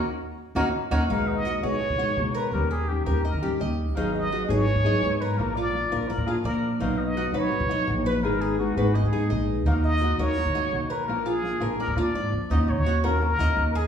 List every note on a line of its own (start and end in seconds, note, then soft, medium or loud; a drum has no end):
0.55 0.69 D#2 loud
0.55 0.67 A#3 medium
0.55 0.67 C#4 medium
0.55 0.68 C#4 medium
0.55 0.67 D#4 loud
0.55 0.68 D#4 loud
0.55 0.68 F#4 loud
0.55 0.64 A#4 medium
0.91 1.05 D#2 medium
0.91 1.03 A#3 medium
0.91 1.03 C#4 loud
0.91 1.03 D#4 loud
0.91 1.03 F#4 loud
0.91 1.01 A#4 medium
1.09 1.60 B1 medium
1.09 1.44 B2 medium
1.09 1.44 D#3 medium
1.09 1.45 G#3 medium
1.09 1.45 B3 medium
1.09 1.45 D#4 medium
1.09 1.45 F#4 medium
1.09 1.29 F5 loud
1.27 1.65 D#5 loud
1.45 1.62 D#3 soft
1.45 1.63 G#3 soft
1.45 1.62 B3 medium
1.45 1.63 F#4 medium
1.45 1.61 F#4 medium
1.62 1.88 B1 medium
1.62 1.79 D#3 medium
1.62 1.80 G#3 medium
1.62 1.80 B3 medium
1.62 1.80 F#4 medium
1.62 1.98 G#4 medium
1.62 2.35 C#5 loud
1.81 muted nylon-string guitar stroke medium
1.89 2.15 B2 medium
1.98 2.15 D#3 medium
1.98 2.16 G#3 medium
1.98 2.16 B3 medium
1.98 2.16 F#4 medium
1.98 2.34 D#5 medium
2.16 2.53 B2 loud
2.16 2.51 D#3 soft
2.16 2.52 G#3 soft
2.16 2.53 B3 medium
2.16 2.53 F#4 soft
2.35 2.69 A#4 medium
2.35 2.52 B4 medium
2.52 3.03 D#2 medium
2.52 2.87 D#3 medium
2.52 2.88 G3 medium
2.52 2.88 C#4 medium
2.52 2.89 G4 medium
2.52 2.70 A#4 medium
2.71 3.05 G4 medium
2.71 2.90 G#4 medium
2.88 3.06 D#3 medium
2.88 3.06 G3 soft
2.88 3.06 C#4 soft
2.88 3.05 G4 medium
3.06 3.31 D#2 medium
3.06 3.23 G3 medium
3.06 3.23 C#4 medium
3.06 3.23 G4 medium
3.06 3.24 A#4 medium
3.24 3.57 A#4 medium
3.24 3.42 D#5 medium
3.24 muted nylon-string guitar stroke medium
3.33 3.58 D#3 medium
3.42 3.59 G3 medium
3.42 3.60 C#4 medium
3.42 3.59 G4 medium
3.42 3.60 G4 medium
3.60 3.96 D#2 medium
3.60 3.94 D#3 soft
3.60 3.95 G3 soft
3.60 3.95 C#4 soft
3.60 3.96 G4 soft
3.60 3.95 D#5 medium
3.95 4.47 G#1 medium
3.95 4.30 D#3 medium
3.95 4.29 F#3 medium
3.95 4.30 B3 medium
3.95 4.31 D#4 medium
3.95 4.31 G#4 medium
3.95 4.12 F5 medium
4.14 4.51 D#5 loud
4.31 4.48 F#3 soft
4.31 4.48 B3 soft
4.31 4.48 D#4 medium
4.31 4.49 F#4 medium
4.31 4.47 G#4 medium
4.48 4.74 G#1 medium
4.48 4.66 F#3 medium
4.48 4.66 B3 medium
4.48 4.66 D#4 medium
4.48 4.66 G#4 medium
4.48 4.84 G#4 medium
4.48 5.23 C#5 loud
4.67 muted nylon-string guitar stroke medium
4.75 5.01 G#2 medium
4.84 5.01 F#3 medium
4.84 5.02 B3 medium
4.84 5.02 D#4 medium
4.84 5.01 G#4 medium
4.84 5.20 D#5 medium
5.02 5.39 G#2 medium
5.02 5.37 F#3 soft
5.02 5.38 B3 medium
5.02 5.38 D#4 medium
5.02 5.39 G#4 soft
5.21 5.56 A#4 medium
5.21 5.39 B4 medium
5.37 5.88 A#1 medium
5.37 5.72 F3 medium
5.37 5.73 A#3 medium
5.37 5.74 D4 medium
5.37 5.74 F4 medium
5.37 5.55 A#4 loud
5.55 5.91 F4 medium
5.55 6.10 D5 loud
5.73 5.91 F3 soft
5.73 5.91 A#3 medium
5.73 5.91 D4 medium
5.73 5.91 F4 soft
5.91 6.17 A#1 medium
5.91 6.09 A#3 medium
5.91 6.09 D4 medium
5.91 6.09 F4 medium
5.91 6.09 A#4 medium
6.08 6.26 A#4 medium
6.08 6.27 D5 medium
6.08 muted nylon-string guitar stroke medium
6.18 6.43 A#2 medium
6.27 6.44 A#3 medium
6.27 6.45 D4 medium
6.27 6.44 F4 medium
6.27 6.45 F4 medium
6.27 6.35 G#4 medium
6.44 6.81 A#2 loud
6.44 6.80 F3 medium
6.44 6.80 A#3 soft
6.44 6.80 D4 soft
6.44 6.81 F4 soft
6.44 6.70 A#4 medium
6.44 6.80 D5 medium
6.80 7.31 B1 medium
6.80 7.15 B2 medium
6.80 7.15 F#3 medium
6.80 7.16 B3 medium
6.80 7.15 D#4 medium
6.80 7.16 D#4 medium
6.80 7.17 F#4 medium
6.80 6.99 F5 loud
6.98 7.36 D#5 loud
7.16 7.34 F#3 soft
7.16 7.33 B3 soft
7.16 7.33 D#4 medium
7.16 7.34 F#4 medium
7.16 7.32 F#4 medium
7.33 7.59 B1 medium
7.33 7.50 F#3 medium
7.33 7.50 B3 medium
7.33 7.51 D#4 medium
7.33 7.51 F#4 medium
7.33 7.69 B4 medium
7.33 8.04 C#5 loud
7.51 muted nylon-string guitar stroke medium
7.60 7.86 B2 medium
7.69 7.86 F#3 medium
7.69 7.86 B3 medium
7.69 7.87 D#4 medium
7.69 7.87 F#4 medium
7.69 8.05 D#5 medium
7.87 8.23 A#1 loud
7.87 8.22 F#3 soft
7.87 8.23 B3 medium
7.87 8.23 D#4 soft
7.87 8.23 F#4 medium
8.05 8.25 B4 medium
8.05 8.40 B4 medium
8.23 8.74 G#1 medium
8.23 8.58 D#3 medium
8.23 8.58 G#3 medium
8.23 8.59 B3 medium
8.23 8.59 D#4 medium
8.23 8.59 G#4 loud
8.23 8.43 A#4 medium
8.41 8.58 G#4 medium
8.41 8.76 G#4 medium
8.59 8.76 G#3 medium
8.59 8.77 B3 medium
8.59 8.76 D#4 medium
8.59 8.75 F#4 medium
8.59 8.76 G#4 medium
8.76 9.02 G#1 medium
8.76 8.94 G#3 medium
8.76 8.94 B3 medium
8.76 8.94 D#4 medium
8.76 8.96 F#4 medium
8.76 8.94 G#4 medium
8.76 8.94 B4 medium
8.95 9.30 G#4 medium
8.95 9.12 D#5 medium
8.95 muted nylon-string guitar stroke medium
9.03 9.29 G#2 medium
9.12 9.30 G#3 medium
9.12 9.30 B3 medium
9.12 9.30 D#4 medium
9.12 9.30 G#4 medium
9.30 9.65 A#1 loud
9.30 9.65 G#3 soft
9.30 9.66 B3 medium
9.30 9.66 D#4 soft
9.30 9.67 G#4 medium
9.30 9.65 D#5 medium
9.65 10.16 D#2 medium
9.65 10.01 D#3 medium
9.65 10.01 A#3 medium
9.65 10.01 D#4 medium
9.65 10.02 D#4 medium
9.65 10.02 F#4 medium
9.65 9.75 F5 loud
9.84 10.21 D#5 loud
10.01 10.19 D#3 medium
10.01 10.19 A#3 medium
10.01 10.20 D#4 medium
10.01 10.19 F#4 medium
10.01 10.18 F#4 medium
10.18 10.44 D#2 medium
10.18 10.36 A#3 medium
10.18 10.37 D#4 medium
10.18 10.37 F#4 medium
10.18 10.54 A#4 medium
10.18 10.90 C#5 loud
10.37 muted nylon-string guitar stroke medium
10.45 10.71 D#3 medium
10.55 10.72 A#3 medium
10.55 10.73 D#4 medium
10.55 10.72 F#4 medium
10.55 10.89 D#5 medium
10.72 11.07 B1 medium
10.72 11.07 D#3 soft
10.72 11.07 A#3 medium
10.72 11.08 D#4 medium
10.72 11.08 F#4 medium
10.90 11.25 A#4 medium
10.90 11.07 B4 medium
11.07 11.58 A#1 medium
11.07 11.42 F3 medium
11.07 11.43 A#3 medium
11.07 11.44 D4 medium
11.07 11.44 F4 medium
11.07 11.24 A#4 medium
11.26 11.60 F4 medium
11.26 11.80 G#4 loud
11.43 11.61 F3 soft
11.43 11.61 A#3 soft
11.43 11.60 D4 medium
11.43 11.59 F4 medium
11.60 11.86 A#1 medium
11.60 11.78 A#3 medium
11.60 11.79 D4 medium
11.60 11.78 F4 medium
11.60 11.79 A#4 medium
11.79 11.99 A#4 medium
11.79 11.97 D5 medium
11.79 muted nylon-string guitar stroke medium
11.87 11.95 A#2 medium
11.96 12.12 A#2 medium
11.96 12.14 A#3 medium
11.96 12.15 D4 medium
11.96 12.14 F4 medium
11.96 12.15 F4 medium
11.96 12.33 D5 medium
12.14 12.31 G#2 medium
12.14 12.50 F3 medium
12.14 12.50 A#3 medium
12.14 12.50 D4 soft
12.14 12.51 F4 medium
12.14 12.50 D5 medium
12.32 12.48 F2 medium
12.50 12.69 D#2 loud
12.50 12.85 D#3 medium
12.50 12.85 A#3 medium
12.50 12.86 C#4 medium
12.50 12.85 D#4 medium
12.50 12.86 F#4 medium
12.50 12.62 D#5 loud
12.62 12.71 D#5 medium
12.68 12.76 A#1 loud
12.68 13.06 C#5 loud
12.77 13.36 D#2 medium
12.86 13.03 D#3 medium
12.86 13.03 A#3 soft
12.86 13.04 C#4 medium
12.86 13.03 F#4 medium
13.04 13.21 A#3 medium
13.04 13.21 C#4 medium
13.04 13.21 F#4 medium
13.04 13.38 A#4 medium
13.04 13.22 A#4 loud
13.22 13.72 A#4 loud
13.22 muted nylon-string guitar stroke medium
13.39 13.56 D#2 loud
13.39 13.56 A#3 medium
13.39 13.57 C#4 medium
13.39 13.56 F#4 medium
13.39 13.74 D#5 medium
13.56 13.87 D#2 loud
13.56 13.87 D#3 soft
13.56 13.87 A#3 medium
13.56 13.87 C#4 soft
13.56 13.87 F#4 medium
13.75 13.87 G#4 medium
13.75 13.84 G#4 medium